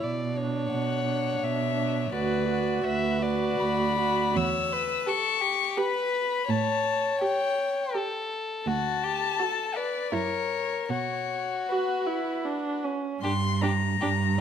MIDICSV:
0, 0, Header, 1, 5, 480
1, 0, Start_track
1, 0, Key_signature, 2, "minor"
1, 0, Tempo, 703400
1, 24, Time_signature, 3, 2, 24, 8
1, 1944, Tempo, 760456
1, 2904, Tempo, 717703
1, 6264, Tempo, 740741
1, 6744, Tempo, 775194
1, 9389, End_track
2, 0, Start_track
2, 0, Title_t, "Violin"
2, 0, Program_c, 0, 40
2, 488, Note_on_c, 0, 78, 51
2, 979, Note_on_c, 0, 76, 66
2, 990, Note_off_c, 0, 78, 0
2, 1454, Note_off_c, 0, 76, 0
2, 1458, Note_on_c, 0, 74, 52
2, 1946, Note_on_c, 0, 71, 63
2, 1956, Note_off_c, 0, 74, 0
2, 2419, Note_on_c, 0, 83, 75
2, 2428, Note_off_c, 0, 71, 0
2, 2902, Note_on_c, 0, 88, 78
2, 2912, Note_off_c, 0, 83, 0
2, 3381, Note_on_c, 0, 85, 75
2, 3391, Note_off_c, 0, 88, 0
2, 3845, Note_on_c, 0, 83, 70
2, 3855, Note_off_c, 0, 85, 0
2, 4328, Note_on_c, 0, 81, 76
2, 4338, Note_off_c, 0, 83, 0
2, 4804, Note_off_c, 0, 81, 0
2, 4808, Note_on_c, 0, 79, 64
2, 5287, Note_off_c, 0, 79, 0
2, 5773, Note_on_c, 0, 81, 74
2, 6500, Note_on_c, 0, 74, 65
2, 6510, Note_off_c, 0, 81, 0
2, 6742, Note_on_c, 0, 73, 72
2, 6752, Note_off_c, 0, 74, 0
2, 7211, Note_off_c, 0, 73, 0
2, 7215, Note_on_c, 0, 73, 60
2, 7705, Note_on_c, 0, 71, 42
2, 7714, Note_off_c, 0, 73, 0
2, 8424, Note_off_c, 0, 71, 0
2, 8660, Note_on_c, 0, 84, 74
2, 8900, Note_on_c, 0, 82, 70
2, 8910, Note_off_c, 0, 84, 0
2, 9389, Note_off_c, 0, 82, 0
2, 9389, End_track
3, 0, Start_track
3, 0, Title_t, "Violin"
3, 0, Program_c, 1, 40
3, 21, Note_on_c, 1, 74, 40
3, 251, Note_on_c, 1, 73, 47
3, 261, Note_off_c, 1, 74, 0
3, 1450, Note_on_c, 1, 71, 45
3, 1460, Note_off_c, 1, 73, 0
3, 1940, Note_off_c, 1, 71, 0
3, 1944, Note_on_c, 1, 76, 52
3, 2180, Note_on_c, 1, 74, 48
3, 2190, Note_off_c, 1, 76, 0
3, 2901, Note_on_c, 1, 73, 48
3, 2911, Note_off_c, 1, 74, 0
3, 3142, Note_on_c, 1, 71, 50
3, 3152, Note_off_c, 1, 73, 0
3, 3370, Note_on_c, 1, 69, 57
3, 3380, Note_off_c, 1, 71, 0
3, 3602, Note_on_c, 1, 67, 51
3, 3612, Note_off_c, 1, 69, 0
3, 3847, Note_on_c, 1, 71, 56
3, 3857, Note_off_c, 1, 67, 0
3, 4317, Note_off_c, 1, 71, 0
3, 4321, Note_on_c, 1, 73, 61
3, 5298, Note_on_c, 1, 69, 53
3, 5308, Note_off_c, 1, 73, 0
3, 5785, Note_on_c, 1, 66, 53
3, 5795, Note_off_c, 1, 69, 0
3, 6024, Note_on_c, 1, 67, 47
3, 6034, Note_off_c, 1, 66, 0
3, 6262, Note_on_c, 1, 69, 51
3, 6272, Note_off_c, 1, 67, 0
3, 6505, Note_on_c, 1, 71, 51
3, 6515, Note_off_c, 1, 69, 0
3, 6742, Note_off_c, 1, 71, 0
3, 6746, Note_on_c, 1, 70, 44
3, 7218, Note_on_c, 1, 66, 41
3, 7227, Note_off_c, 1, 70, 0
3, 8424, Note_off_c, 1, 66, 0
3, 8665, Note_on_c, 1, 67, 50
3, 8715, Note_off_c, 1, 67, 0
3, 8911, Note_on_c, 1, 67, 43
3, 8961, Note_off_c, 1, 67, 0
3, 9143, Note_on_c, 1, 67, 48
3, 9193, Note_off_c, 1, 67, 0
3, 9389, End_track
4, 0, Start_track
4, 0, Title_t, "Viola"
4, 0, Program_c, 2, 41
4, 259, Note_on_c, 2, 62, 35
4, 725, Note_off_c, 2, 62, 0
4, 735, Note_on_c, 2, 62, 30
4, 1207, Note_off_c, 2, 62, 0
4, 1210, Note_on_c, 2, 62, 34
4, 1451, Note_off_c, 2, 62, 0
4, 1461, Note_on_c, 2, 66, 37
4, 1696, Note_off_c, 2, 66, 0
4, 1702, Note_on_c, 2, 66, 37
4, 2175, Note_off_c, 2, 66, 0
4, 2182, Note_on_c, 2, 66, 40
4, 2657, Note_off_c, 2, 66, 0
4, 2669, Note_on_c, 2, 66, 39
4, 2901, Note_off_c, 2, 66, 0
4, 3372, Note_on_c, 2, 67, 50
4, 3726, Note_off_c, 2, 67, 0
4, 3844, Note_on_c, 2, 67, 57
4, 4205, Note_off_c, 2, 67, 0
4, 4808, Note_on_c, 2, 67, 50
4, 5172, Note_off_c, 2, 67, 0
4, 5297, Note_on_c, 2, 67, 45
4, 5655, Note_off_c, 2, 67, 0
4, 6266, Note_on_c, 2, 66, 49
4, 6621, Note_off_c, 2, 66, 0
4, 6737, Note_on_c, 2, 64, 44
4, 7098, Note_off_c, 2, 64, 0
4, 7703, Note_on_c, 2, 66, 46
4, 7941, Note_on_c, 2, 64, 38
4, 7950, Note_off_c, 2, 66, 0
4, 8180, Note_on_c, 2, 62, 44
4, 8189, Note_off_c, 2, 64, 0
4, 8420, Note_on_c, 2, 61, 35
4, 8429, Note_off_c, 2, 62, 0
4, 8660, Note_off_c, 2, 61, 0
4, 8664, Note_on_c, 2, 62, 44
4, 8713, Note_off_c, 2, 62, 0
4, 8902, Note_on_c, 2, 62, 46
4, 8951, Note_off_c, 2, 62, 0
4, 9153, Note_on_c, 2, 62, 43
4, 9202, Note_off_c, 2, 62, 0
4, 9389, End_track
5, 0, Start_track
5, 0, Title_t, "Cello"
5, 0, Program_c, 3, 42
5, 14, Note_on_c, 3, 47, 44
5, 436, Note_off_c, 3, 47, 0
5, 487, Note_on_c, 3, 47, 47
5, 913, Note_off_c, 3, 47, 0
5, 968, Note_on_c, 3, 47, 47
5, 1399, Note_off_c, 3, 47, 0
5, 1450, Note_on_c, 3, 38, 54
5, 1882, Note_off_c, 3, 38, 0
5, 1939, Note_on_c, 3, 38, 53
5, 2366, Note_off_c, 3, 38, 0
5, 2418, Note_on_c, 3, 38, 52
5, 2846, Note_off_c, 3, 38, 0
5, 2899, Note_on_c, 3, 40, 63
5, 3279, Note_off_c, 3, 40, 0
5, 4325, Note_on_c, 3, 45, 69
5, 4707, Note_off_c, 3, 45, 0
5, 5778, Note_on_c, 3, 38, 60
5, 6163, Note_off_c, 3, 38, 0
5, 6739, Note_on_c, 3, 42, 47
5, 7122, Note_off_c, 3, 42, 0
5, 7219, Note_on_c, 3, 47, 49
5, 7609, Note_off_c, 3, 47, 0
5, 8662, Note_on_c, 3, 43, 64
5, 9093, Note_off_c, 3, 43, 0
5, 9146, Note_on_c, 3, 43, 63
5, 9389, Note_off_c, 3, 43, 0
5, 9389, End_track
0, 0, End_of_file